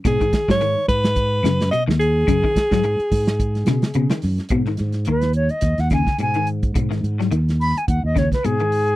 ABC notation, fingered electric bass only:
X:1
M:4/4
L:1/16
Q:"Swing 16ths" 1/4=107
K:G#m
V:1 name="Fingered electric bass" clef=bass
G,,2 z G,,2 z G,,4 F,,2 z D,,3 | F,, z2 G,,2 z G,,4 B,, z C, z F,, z | G,,2 G,,2 D,,3 z D,, D,,2 z G,,4 | G,,2 G,,2 D,,3 z D,, D,,2 z G,,4 |]